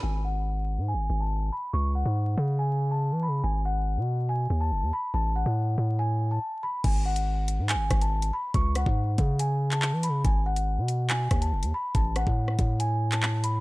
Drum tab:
CC |----------------|----------------|----------------|----------------|
HH |----------------|----------------|----------------|----------------|
CP |----------------|----------------|----------------|----------------|
SD |----------------|----------------|----------------|----------------|
BD |----------------|----------------|----------------|----------------|

CC |x---------------|----------------|----------------|----------------|
HH |x--x--x-x-xx-x--|x-x---x-x--x--x-|x--x--x-x-xx-x--|x-x---x-x--x--x-|
CP |--------x-------|-----------xx---|--------x-------|-----------xx---|
SD |----------r-----|--r-------------|----------r-----|--r--r----------|
BD |o---------o-----|o--o--o---------|o---------o-----|o--o--o---------|